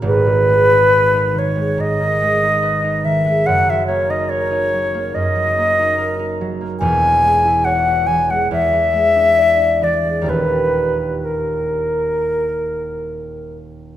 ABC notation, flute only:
X:1
M:4/4
L:1/16
Q:1/4=70
K:G#m
V:1 name="Flute"
B6 c2 d6 e2 | f e c d c4 d6- d z | g4 f2 g f e6 =d2 | B4 A8- A2 z2 |]